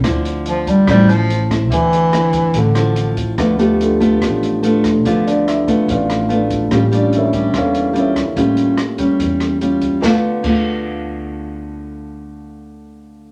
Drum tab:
CC |--------|--------|--------|--------|
HH |xxxxxxxx|xxxxxxxx|xxxxxxxx|xxxxxxxx|
SD |r---r--r|--r--r--|r---r--r|--r--r--|
BD |o--oo--o|o--oo--o|o--oo--o|o--oo--o|

CC |--------|--------|--x-----|--------|
HH |xxxxxxxx|xxxxxxxx|--------|--------|
SD |r---r--r|--r--r--|o-------|--------|
BD |o--oo--o|o--oo--o|o-o-----|--------|